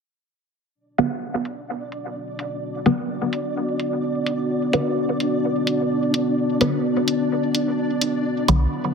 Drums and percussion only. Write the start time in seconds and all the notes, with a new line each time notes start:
0.98 closed hi-hat
1.45 closed hi-hat
1.92 closed hi-hat
2.39 closed hi-hat
2.86 closed hi-hat
3.33 closed hi-hat
3.80 closed hi-hat
4.26 closed hi-hat
4.73 closed hi-hat
5.20 closed hi-hat
5.67 closed hi-hat
6.14 closed hi-hat
6.61 closed hi-hat
7.08 closed hi-hat
7.55 closed hi-hat
8.01 closed hi-hat
8.48 closed hi-hat